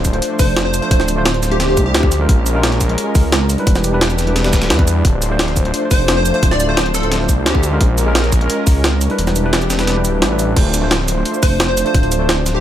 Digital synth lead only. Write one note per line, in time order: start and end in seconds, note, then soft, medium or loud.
0.39 0.60 C5 medium
0.65 0.81 C5 medium
0.82 1.31 C5 medium
1.51 1.57 G4 medium
1.60 1.65 G4 medium
1.69 1.84 G4 medium
1.86 2.20 G4 medium
5.91 6.12 C5 loud
6.17 6.32 C5 medium
6.34 6.51 C5 medium
6.51 6.57 D5 medium
6.60 6.66 D5 medium
6.69 6.89 C5 medium
6.95 7.15 A4 medium
7.46 7.72 G4 medium
11.43 11.63 C5 loud
11.68 11.84 C5 medium
11.86 12.34 C5 medium
12.55 12.60 G4 medium